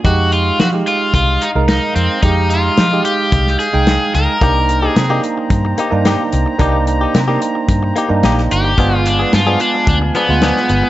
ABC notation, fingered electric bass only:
X:1
M:4/4
L:1/16
Q:1/4=110
K:Cm
V:1 name="Fingered electric bass" clef=bass
F,,4 F,2 z2 C,,2 z C,,2 z F,, z | F,,4 F,2 z2 C,,2 z C,,2 z _D,, z | C,,4 C,2 z2 G,,2 z G,,2 z C,, z | C,,4 C,2 z2 G,,2 z G,, B,,,2 G,,,2 |
G,,,4 G,,2 z2 D,,2 z D,,2 z G,,, z |]